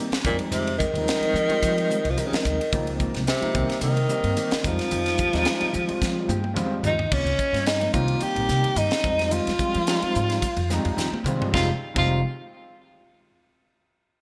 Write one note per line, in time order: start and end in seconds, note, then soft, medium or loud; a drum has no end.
0.00 0.14 D#3 medium
0.00 0.10 A#3 medium
0.00 0.15 A#3 medium
0.00 0.10 C4 medium
0.00 0.15 C4 medium
0.00 0.11 D#4 medium
0.00 0.15 G4 medium
0.11 muted upright bass stroke soft
0.11 snare loud
0.11 ride medium
0.24 0.37 F2 medium
0.24 0.38 A#2 medium
0.24 0.80 F3 medium
0.24 0.81 G3 medium
0.24 0.81 G#3 medium
0.24 0.81 C4 medium
0.24 0.81 D#4 medium
0.24 muted clean electric guitar stroke soft
0.24 kick medium
0.24 hi-hat pedal medium
0.39 muted clean electric guitar stroke soft
0.39 ride medium
0.51 0.85 F2 medium
0.51 0.77 C3 medium
0.51 0.70 D#3 medium
0.51 0.70 G#3 medium
0.51 0.70 C4 medium
0.51 0.70 G4 medium
0.51 hi-hat pedal medium
0.51 ride medium
0.67 ride medium
0.78 2.12 D#3 loud
0.78 0.94 D#3 medium
0.78 0.94 G#3 medium
0.78 0.93 C4 medium
0.78 0.93 G4 medium
0.78 kick medium
0.78 hi-hat pedal medium
0.94 1.04 D#2 medium
0.94 1.33 F3 medium
0.94 1.33 G3 medium
0.94 1.33 G#3 medium
0.94 1.33 C4 medium
0.94 1.34 D#4 medium
0.94 muted clean electric guitar stroke soft
0.94 ride medium
1.07 muted clean electric guitar stroke soft
1.07 snare loud
1.07 hi-hat pedal medium
1.07 ride medium
1.21 muted upright bass stroke soft
1.21 muted clean electric guitar stroke soft
1.21 ride medium
1.34 1.49 D#3 medium
1.34 1.46 F3 medium
1.34 1.49 G#3 medium
1.34 1.48 C4 medium
1.34 1.48 G4 medium
1.34 hi-hat pedal medium
1.49 1.97 F3 medium
1.49 1.97 G3 medium
1.49 1.97 G#3 medium
1.49 1.97 C4 medium
1.49 1.98 F4 medium
1.49 muted upright bass stroke soft
1.49 muted clean electric guitar stroke soft
1.49 ride medium
1.63 1.84 F3 medium
1.63 kick medium
1.63 hi-hat pedal medium
1.63 ride medium
1.77 muted clean electric guitar stroke medium
1.77 ride medium
1.90 2.04 D#3 medium
1.90 2.05 G#3 medium
1.90 2.05 C4 medium
1.90 2.04 G4 medium
1.90 hi-hat pedal medium
2.05 2.15 C2 medium
2.05 muted clean electric guitar stroke soft
2.05 ride medium
2.10 2.20 F3 medium
2.17 2.34 D#3 medium
2.17 2.28 D#3 medium
2.17 2.56 F3 medium
2.17 2.56 G3 medium
2.17 2.35 G#3 medium
2.17 2.57 G#3 medium
2.17 2.35 C4 medium
2.17 2.57 C4 medium
2.17 2.58 D#4 medium
2.17 2.35 G4 medium
2.17 hi-hat pedal medium
2.17 ride medium
2.27 2.37 C#3 medium
2.32 2.42 D#3 medium
2.32 muted upright bass stroke soft
2.32 snare loud
2.32 ride medium
2.42 2.57 D#2 medium
2.42 2.95 D#3 medium
2.42 muted clean electric guitar stroke soft
2.42 kick medium
2.42 hi-hat pedal medium
2.60 muted clean electric guitar stroke soft
2.60 ride medium
2.72 3.06 C#2 medium
2.72 2.90 D#3 medium
2.72 3.21 F3 medium
2.72 3.21 G#3 medium
2.72 2.90 A#3 medium
2.72 3.21 A#3 medium
2.72 2.90 C4 medium
2.72 3.22 C4 medium
2.72 3.22 D#4 medium
2.72 2.90 F4 medium
2.72 kick loud
2.72 hi-hat pedal medium
2.72 ride medium
2.87 ride medium
2.99 3.15 D#3 medium
2.99 3.14 A#3 medium
2.99 3.14 C4 medium
2.99 3.14 F4 medium
2.99 kick medium
2.99 hi-hat pedal medium
3.14 3.25 C2 medium
3.14 muted clean electric guitar stroke soft
3.14 snare soft
3.14 ride medium
3.27 3.78 C3 medium
3.27 muted clean electric guitar stroke soft
3.27 snare loud
3.27 hi-hat pedal medium
3.27 ride medium
3.41 3.54 F3 medium
3.41 3.54 G#3 medium
3.41 3.55 A#3 medium
3.41 3.55 C4 medium
3.41 3.55 D#4 medium
3.41 muted clean electric guitar stroke soft
3.41 muted upright bass stroke soft
3.41 ride medium
3.54 3.67 C2 medium
3.54 3.69 D#3 medium
3.54 4.00 D#3 medium
3.54 4.00 G3 medium
3.54 3.68 A#3 medium
3.54 4.00 A#3 medium
3.54 3.68 C4 medium
3.54 4.00 C4 medium
3.54 4.01 D#4 medium
3.54 3.68 G4 medium
3.54 kick medium
3.54 hi-hat pedal medium
3.69 muted clean electric guitar stroke soft
3.69 snare soft
3.69 ride medium
3.81 4.03 C3 medium
3.81 4.68 D#3 medium
3.81 hi-hat pedal medium
3.81 ride medium
3.96 muted clean electric guitar stroke soft
3.96 ride medium
4.08 4.24 D#3 medium
4.08 4.48 D#3 medium
4.08 4.49 G3 medium
4.08 4.24 A#3 medium
4.08 4.49 A#3 medium
4.08 4.23 C4 medium
4.08 4.49 C4 medium
4.08 4.49 D#4 medium
4.08 4.23 G4 medium
4.08 hi-hat pedal medium
4.24 4.34 G2 medium
4.24 muted clean electric guitar stroke soft
4.24 ride medium
4.37 4.54 D#3 medium
4.37 4.54 A#3 medium
4.37 4.54 C4 medium
4.37 4.55 G4 medium
4.37 hi-hat pedal medium
4.37 ride medium
4.51 muted upright bass stroke soft
4.51 snare loud
4.51 ride medium
4.63 4.76 F2 medium
4.63 5.19 F3 medium
4.63 6.58 F3 loud
4.63 5.19 G3 medium
4.63 5.19 G#3 medium
4.63 5.20 C4 medium
4.63 5.20 D#4 medium
4.63 muted clean electric guitar stroke soft
4.63 kick medium
4.63 hi-hat pedal medium
4.78 muted clean electric guitar stroke soft
4.78 snare soft
4.78 ride medium
4.90 5.25 F2 medium
4.90 5.09 D#3 medium
4.90 5.09 G#3 medium
4.90 5.09 C4 medium
4.90 5.09 G4 medium
4.90 hi-hat pedal medium
4.90 ride medium
5.06 snare soft
5.06 ride medium
5.18 5.34 D#3 medium
5.18 5.32 G#3 medium
5.18 5.32 C4 medium
5.18 5.31 G4 medium
5.18 kick medium
5.18 hi-hat pedal medium
5.33 5.44 D#2 medium
5.33 5.71 F3 medium
5.33 5.71 G3 medium
5.33 5.72 G#3 medium
5.33 5.72 C4 medium
5.33 5.72 D#4 loud
5.33 muted clean electric guitar stroke soft
5.33 snare soft
5.33 ride medium
5.45 snare loud
5.45 hi-hat pedal medium
5.45 ride medium
5.60 muted clean electric guitar stroke soft
5.60 muted upright bass stroke soft
5.60 ride medium
5.72 5.88 D#3 medium
5.72 5.87 F3 medium
5.72 5.88 G#3 medium
5.72 5.87 C4 medium
5.72 5.87 G4 loud
5.72 hi-hat pedal medium
5.87 6.36 F3 medium
5.87 6.36 G3 medium
5.87 6.36 G#3 medium
5.87 6.36 C4 medium
5.87 6.36 F4 medium
5.87 muted clean electric guitar stroke soft
5.87 muted upright bass stroke soft
5.87 ride medium
6.02 6.24 F3 medium
6.02 kick medium
6.02 snare medium
6.02 hi-hat pedal medium
6.16 muted clean electric guitar stroke soft
6.28 6.54 G2 medium
6.28 6.44 D#3 medium
6.28 6.43 G#3 medium
6.28 6.43 C4 medium
6.28 6.43 G4 medium
6.28 6.55 G5 medium
6.28 hi-hat pedal medium
6.28 high tom medium
6.44 muted clean electric guitar stroke soft
6.44 high tom medium
6.54 6.81 F2 medium
6.54 6.74 D#3 medium
6.54 6.94 F3 medium
6.54 6.94 G3 medium
6.54 6.95 G#3 medium
6.54 6.74 G#3 medium
6.54 6.95 C4 medium
6.54 6.75 C4 medium
6.54 6.95 F4 medium
6.54 6.75 G4 medium
6.54 6.82 F5 medium
6.54 hi-hat pedal medium
6.54 mid tom medium
6.83 7.09 D#2 medium
6.83 7.15 D#4 medium
6.83 7.10 D#5 medium
6.83 muted clean electric guitar stroke soft
6.83 floor tom medium
6.83 hi-hat pedal medium
6.99 muted clean electric guitar stroke soft
6.99 floor tom medium
7.12 7.24 C#2 medium
7.12 7.29 D#3 medium
7.12 7.29 A#3 medium
7.12 7.29 C4 medium
7.12 7.68 C#4 medium
7.12 7.30 F4 medium
7.12 kick loud
7.12 crash medium
7.25 7.36 C#2 medium
7.25 ride medium
7.39 muted clean electric guitar stroke soft
7.39 muted upright bass stroke soft
7.39 kick medium
7.39 hi-hat pedal medium
7.52 7.85 G2 medium
7.52 7.66 A#3 soft
7.52 7.66 C4 soft
7.52 7.66 F4 soft
7.52 snare soft
7.52 ride medium
7.66 7.92 D#4 medium
7.66 muted clean electric guitar stroke soft
7.66 snare loud
7.66 hi-hat pedal medium
7.66 ride medium
7.81 7.95 F3 medium
7.81 7.95 G#3 medium
7.81 7.93 A#3 medium
7.81 7.94 C4 medium
7.81 7.94 D#4 medium
7.81 muted clean electric guitar stroke soft
7.81 ride medium
7.93 8.16 C2 medium
7.93 8.82 D#3 medium
7.93 8.12 D#3 medium
7.93 8.83 G3 medium
7.93 8.83 A#3 medium
7.93 8.12 A#3 medium
7.93 8.12 C4 medium
7.93 8.83 C4 medium
7.93 8.83 D#4 medium
7.93 8.24 F4 medium
7.93 8.12 G4 medium
7.93 kick medium
7.93 hi-hat pedal medium
8.08 ride medium
8.21 8.79 G4 loud
8.21 muted upright bass stroke soft
8.21 hi-hat pedal medium
8.21 ride medium
8.36 8.46 A#1 medium
8.36 muted clean electric guitar stroke soft
8.36 ride medium
8.48 8.61 C3 medium
8.48 8.64 D#3 medium
8.48 8.63 A#3 medium
8.48 8.63 C4 medium
8.48 8.62 G4 medium
8.48 snare soft
8.48 hi-hat pedal medium
8.63 muted clean electric guitar stroke soft
8.63 muted upright bass stroke soft
8.63 ride medium
8.76 8.88 G2 medium
8.76 8.94 D#3 medium
8.76 8.94 A#3 medium
8.76 8.95 C4 medium
8.76 9.33 D#4 medium
8.76 8.94 G4 medium
8.76 hi-hat pedal medium
8.76 ride medium
8.91 snare loud
8.91 ride medium
9.04 9.38 F2 medium
9.04 9.49 F3 medium
9.04 9.50 G3 medium
9.04 9.50 G#3 medium
9.04 9.50 C4 medium
9.04 9.51 D#4 medium
9.04 muted clean electric guitar stroke soft
9.04 kick medium
9.04 hi-hat pedal medium
9.18 muted clean electric guitar stroke soft
9.18 snare soft
9.18 ride medium
9.31 9.49 D#3 medium
9.31 9.50 G#3 medium
9.31 9.50 C4 medium
9.31 11.25 F4 medium
9.31 9.50 G4 medium
9.31 hi-hat pedal medium
9.31 ride medium
9.47 9.57 F2 medium
9.47 snare soft
9.47 ride medium
9.59 9.79 F3 medium
9.59 9.79 G3 medium
9.59 9.79 G#3 medium
9.59 9.80 C4 medium
9.59 9.80 F4 medium
9.59 muted clean electric guitar stroke soft
9.59 kick medium
9.59 hi-hat pedal medium
9.73 9.97 F3 medium
9.73 9.85 G#3 soft
9.73 9.85 C4 soft
9.73 9.85 G4 medium
9.73 ride medium
9.86 10.45 F3 medium
9.86 10.45 G3 medium
9.86 10.46 G#3 medium
9.86 10.46 C4 medium
9.86 10.46 D#4 medium
9.86 muted clean electric guitar stroke soft
9.86 snare loud
9.86 hi-hat pedal medium
9.86 ride medium
10.01 muted clean electric guitar stroke soft
10.01 muted upright bass stroke soft
10.01 ride medium
10.15 10.37 G#2 medium
10.15 hi-hat pedal medium
10.29 muted clean electric guitar stroke soft
10.29 snare soft
10.29 ride medium
10.42 kick medium
10.42 hi-hat pedal medium
10.42 ride medium
10.57 10.79 F2 medium
10.57 muted clean electric guitar stroke soft
10.57 ride medium
10.70 10.85 D#3 medium
10.70 11.09 F3 loud
10.70 11.10 G3 medium
10.70 10.84 G#3 medium
10.70 11.10 G#3 medium
10.70 10.84 C4 medium
10.70 11.10 C4 medium
10.70 11.10 D#4 loud
10.70 10.84 G4 medium
10.70 snare soft
10.70 hi-hat pedal medium
10.85 10.95 F2 medium
10.85 muted clean electric guitar stroke medium
10.85 ride medium
10.97 11.09 F2 medium
10.97 11.15 D#3 medium
10.97 11.15 G#3 medium
10.97 11.15 C4 loud
10.97 11.15 G4 loud
10.97 snare medium
10.97 hi-hat pedal medium
11.12 muted upright bass stroke soft
11.12 high tom medium
11.24 11.36 D#3 medium
11.24 11.53 F3 medium
11.24 11.53 G3 medium
11.24 11.53 G#3 medium
11.24 muted clean electric guitar stroke soft
11.24 hi-hat pedal medium
11.24 mid tom medium
11.28 11.52 C4 medium
11.28 11.54 F4 loud
11.39 muted upright bass stroke soft
11.39 muted clean electric guitar stroke medium
11.39 floor tom medium
11.52 11.69 F1 medium
11.52 11.69 D#3 medium
11.52 11.70 F3 medium
11.52 11.69 G3 medium
11.52 11.70 G#3 medium
11.52 11.70 C4 medium
11.52 11.69 C4 medium
11.52 11.70 D#4 medium
11.52 11.69 F4 medium
11.52 11.71 G4 medium
11.52 kick loud
11.52 snare medium
11.94 12.21 F1 loud
11.94 12.16 D#3 medium
11.94 12.21 F3 medium
11.94 12.21 G3 medium
11.94 12.17 G#3 medium
11.94 12.21 G#3 medium
11.94 12.17 C4 medium
11.94 12.21 C4 medium
11.94 12.21 D#4 medium
11.94 12.22 F4 medium
11.94 12.18 G4 medium
11.94 kick loud
11.94 crash medium